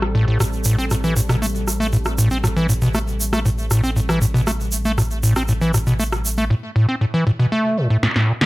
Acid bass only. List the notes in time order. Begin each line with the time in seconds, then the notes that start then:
0.15 A2
0.28 A2
0.40 A2
0.66 A2
0.79 C4
0.91 A2
1.04 E3
1.17 A2
1.29 B2
1.42 A3
1.80 A3
1.93 A2
2.18 A2
2.31 C4
2.44 A2
2.56 E3
2.69 A2
2.82 B2
2.95 A3
3.33 A3
3.45 A2
3.71 A2
3.84 C4
3.96 A2
4.09 E3
4.22 A2
4.34 B2
4.47 A3
4.85 A3
4.98 A2
5.23 A2
5.36 C4
5.49 A2
5.62 E3
5.74 A2
5.87 B2
6.00 A3
6.38 A3
6.50 A2
6.76 A2
6.89 C4
7.01 A2
7.14 E3
7.27 A2
7.39 B2
7.52 A3
7.77 A2
7.90 A2
8.03 A2
8.16 A2
8.28 B2
8.41 D3